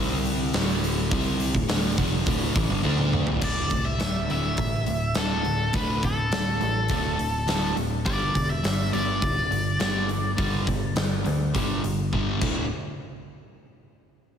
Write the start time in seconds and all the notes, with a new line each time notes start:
Already playing: C2 C3 G3 C4
0.25 open hi-hat
0.53 D1 D2 A2 D3, snare, open hi-hat
0.84 open hi-hat
1.11 C2 C3 G3 C4, kick, open hi-hat
1.40 open hi-hat
1.55 D1 D2 A2, kick
1.68 D1 D2 A2 D3, snare, open hi-hat
1.97 F1 F2 C3 F3, kick, open hi-hat
2.26 D1 D2 A2 D3, kick, open hi-hat
2.55 A1 A2 E3, kick, open hi-hat
2.70 G1 G2 D3
2.83 D2 D3 A3 D4, high tom
2.98 mid tom
3.13 mid tom
3.27 D1 D2 A2, floor tom
3.41 D1 D2 A2 D3 D5, kick, crash
3.70 C2 D2 A2, kick, open hi-hat
3.86 E5
3.99 D1 D2 A2, snare, open hi-hat
4.29 D1 D2 A2 D3 E5, open hi-hat
4.57 A1 D2 A2, kick, open hi-hat
4.86 D1 D2 A2, open hi-hat
5.15 D1 D2 A2 D3 A4, snare, open hi-hat
5.45 D2 A2, open hi-hat
5.73 D1 D2 A2 D3 B4, kick, open hi-hat
6.03 D1 D2 A2 A4, kick, open hi-hat
6.32 D1 D2 A2, snare, open hi-hat
6.61 A1 D2 A2, open hi-hat
6.88 D1 D2 A2 D3, kick, open hi-hat
7.18 D1 D2 A2, open hi-hat
7.47 D1 D2 A2 D3, snare, open hi-hat
7.77 D1 D2 A2, open hi-hat
8.05 G1 G2 D3 G3 D5, kick, open hi-hat
8.35 E1 G2 D3, kick, open hi-hat
8.50 E5
8.63 G1 G2 D3, snare, open hi-hat
8.92 G1 G2 D3 G3 D5, open hi-hat
9.21 D1 G2 D3, kick, open hi-hat
9.51 G1 G2 D3, open hi-hat
9.79 G1 G2 D3 G3, snare, open hi-hat
10.09 G2 D3, open hi-hat
10.37 G1 G2 D3 G3, kick, open hi-hat
10.67 G1 G2 D3, kick, open hi-hat
10.96 G1 G2 D3, snare, open hi-hat
11.25 D2 G2 D3, open hi-hat
11.54 G1 G2 D3 G3, kick, open hi-hat
11.83 G1 G2 D3, open hi-hat
12.12 G1 G2 D3 G3, kick
12.41 D1 D2 A2 D3, kick, crash